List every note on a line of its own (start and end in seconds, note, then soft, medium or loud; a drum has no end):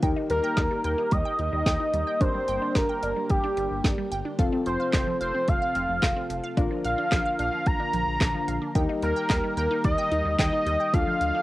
0.00 0.13 D#2 loud
0.00 2.19 D#3 medium
0.00 4.35 G3 medium
0.00 4.35 A#3 medium
0.00 2.17 D#4 medium
0.00 2.17 G4 medium
0.00 4.35 G4 medium
0.00 4.35 A#4 medium
0.00 2.17 A#4 medium
0.00 0.10 G5 loud
0.00 kick loud
0.00 closed hi-hat medium
0.16 0.24 D#4 medium
0.30 0.41 D#2 medium
0.30 0.37 G3 medium
0.30 0.81 A#4 loud
0.30 closed hi-hat medium
0.44 0.51 G5 loud
0.57 0.68 D#2 loud
0.57 0.65 D#4 medium
0.57 kick loud
0.57 snare loud
0.57 closed hi-hat medium
0.71 0.78 G3 medium
0.84 0.95 D#2 loud
0.84 1.14 A#4 loud
0.84 0.92 G5 medium
0.84 closed hi-hat medium
0.98 1.05 D#4 medium
1.11 1.22 D#2 loud
1.11 1.19 G3 medium
1.11 2.22 D#5 loud
1.11 kick loud
1.11 closed hi-hat medium
1.25 1.33 G5 loud
1.39 1.50 D#2 loud
1.39 1.46 D#4 medium
1.39 closed hi-hat medium
1.53 1.63 D#2 medium
1.53 1.60 G3 medium
1.66 1.77 D#2 loud
1.66 1.74 G5 medium
1.66 kick loud
1.66 snare loud
1.66 closed hi-hat medium
1.80 1.87 D#4 medium
1.94 2.04 D#2 loud
1.94 2.01 G3 medium
1.94 closed hi-hat medium
2.07 2.15 G5 loud
2.21 2.31 G1 loud
2.21 4.37 D3 medium
2.21 4.35 D4 medium
2.21 2.28 D4 medium
2.21 4.35 G4 medium
2.21 4.35 A#4 medium
2.21 2.77 C5 loud
2.21 kick loud
2.21 closed hi-hat medium
2.35 2.42 G3 medium
2.48 2.59 G1 loud
2.48 2.56 G5 loud
2.48 closed hi-hat medium
2.62 2.69 D4 medium
2.75 2.86 G1 loud
2.75 2.83 G3 medium
2.75 3.32 A#4 loud
2.75 kick loud
2.75 snare loud
2.75 closed hi-hat medium
2.89 2.97 G5 loud
3.03 3.13 G1 loud
3.03 3.10 D4 medium
3.03 closed hi-hat medium
3.16 3.24 G3 medium
3.30 3.41 G1 loud
3.30 4.12 G4 medium
3.30 kick loud
3.30 closed hi-hat medium
3.44 3.51 D4 medium
3.57 3.68 G1 loud
3.57 3.65 G3 medium
3.57 closed hi-hat medium
3.71 3.81 G1 loud
3.84 3.95 G1 loud
3.84 3.92 D4 medium
3.84 kick loud
3.84 snare loud
3.84 closed hi-hat medium
3.98 4.06 G3 medium
4.12 4.22 G1 loud
4.12 4.19 G5 loud
4.12 closed hi-hat medium
4.25 4.33 D4 medium
4.39 4.50 F1 loud
4.39 6.55 C3 medium
4.39 8.71 F3 medium
4.39 6.55 A3 medium
4.39 6.53 C4 medium
4.39 8.71 F4 medium
4.39 6.53 F4 medium
4.39 6.55 A4 medium
4.39 6.53 A4 medium
4.39 4.46 F5 loud
4.39 kick loud
4.39 closed hi-hat medium
4.53 4.60 C4 medium
4.66 4.77 F1 loud
4.66 4.74 F3 medium
4.66 5.17 C5 medium
4.66 closed hi-hat medium
4.80 4.87 F5 loud
4.93 5.04 F1 loud
4.93 5.01 C4 medium
4.93 kick loud
4.93 snare loud
4.93 clap medium
4.93 closed hi-hat medium
5.07 5.15 F3 medium
5.21 5.32 F1 loud
5.21 5.50 C5 medium
5.21 5.28 F5 loud
5.21 closed hi-hat medium
5.35 5.42 C4 medium
5.48 5.59 F1 loud
5.48 5.56 F3 medium
5.48 6.57 F5 loud
5.48 kick loud
5.48 closed hi-hat medium
5.62 5.69 F5 loud
5.75 5.86 F1 loud
5.75 5.83 C4 medium
5.75 closed hi-hat medium
5.89 6.00 F1 loud
5.89 5.96 F3 medium
6.03 6.13 F1 loud
6.03 6.10 F5 medium
6.03 kick loud
6.03 snare loud
6.03 clap medium
6.03 closed hi-hat medium
6.16 6.24 C4 medium
6.30 6.41 F1 loud
6.30 6.37 F3 medium
6.30 closed hi-hat medium
6.44 6.51 F5 loud
6.57 6.68 A#1 loud
6.57 8.73 D3 medium
6.57 10.90 A#3 medium
6.57 6.64 D4 medium
6.57 8.71 D4 medium
6.57 8.71 F4 medium
6.57 8.71 A#4 medium
6.57 8.73 A#4 medium
6.57 kick loud
6.57 closed hi-hat medium
6.71 6.78 F3 medium
6.84 6.95 A#1 loud
6.84 6.92 F5 loud
6.84 7.35 F5 loud
6.84 closed hi-hat medium
6.98 7.05 D4 medium
7.12 7.22 A#1 loud
7.12 7.19 F3 medium
7.12 kick loud
7.12 snare loud
7.12 clap medium
7.12 closed hi-hat medium
7.25 7.33 F5 loud
7.39 7.50 A#1 loud
7.39 7.46 D4 medium
7.39 7.68 F5 medium
7.39 closed hi-hat medium
7.53 7.60 F3 medium
7.66 7.77 A#1 loud
7.66 8.76 A#5 loud
7.66 kick loud
7.66 closed hi-hat medium
7.80 7.87 D4 medium
7.93 8.04 A#1 loud
7.93 8.01 F3 medium
7.93 closed hi-hat medium
8.07 8.18 A#1 loud
8.21 8.31 A#1 loud
8.21 8.28 D4 medium
8.21 kick loud
8.21 snare loud
8.21 clap medium
8.21 closed hi-hat medium
8.34 8.42 F3 medium
8.48 8.59 A#1 loud
8.48 8.55 F5 loud
8.48 closed hi-hat medium
8.62 8.69 D4 medium
8.75 8.86 D#2 loud
8.75 10.91 D#3 medium
8.75 10.91 G3 medium
8.75 10.90 D#4 medium
8.75 10.90 G4 medium
8.75 10.91 G4 medium
8.75 10.90 A#4 medium
8.75 10.91 A#4 medium
8.75 8.83 G5 loud
8.75 kick loud
8.75 closed hi-hat medium
8.89 8.96 D#4 medium
9.03 9.13 D#2 medium
9.03 9.10 G3 medium
9.03 9.54 A#4 medium
9.03 closed hi-hat medium
9.16 9.24 G5 loud
9.30 9.41 D#2 medium
9.30 9.37 D#4 medium
9.30 kick loud
9.30 snare loud
9.30 clap medium
9.30 closed hi-hat medium
9.44 9.51 G3 medium
9.57 9.68 D#2 loud
9.57 9.83 A#4 medium
9.57 9.65 G5 loud
9.57 closed hi-hat medium
9.71 9.78 D#4 medium
9.84 9.95 D#2 loud
9.84 9.92 G3 medium
9.84 10.35 D#5 loud
9.84 kick loud
9.84 closed hi-hat medium
9.98 10.06 G5 medium
10.12 10.22 D#2 medium
10.12 10.19 D#4 medium
10.12 closed hi-hat medium
10.25 10.36 D#2 loud
10.25 10.33 G3 medium
10.39 10.50 D#2 loud
10.39 10.95 D#5 loud
10.39 10.46 G5 loud
10.39 kick loud
10.39 snare loud
10.39 clap medium
10.39 closed hi-hat medium
10.53 10.60 D#4 medium
10.66 10.77 D#2 loud
10.66 10.74 G3 medium
10.66 closed hi-hat medium
10.80 10.87 G5 loud
10.94 11.04 D2 loud
10.94 11.42 D3 medium
10.94 11.42 F3 medium
10.94 11.42 A3 medium
10.94 11.42 D4 medium
10.94 11.01 D4 medium
10.94 11.42 F4 medium
10.94 11.42 A4 medium
10.94 11.42 F5 loud
10.94 kick loud
10.94 closed hi-hat medium
11.07 11.15 F3 medium
11.21 11.31 D2 loud
11.21 11.28 F5 loud
11.21 closed hi-hat medium
11.35 11.42 D4 medium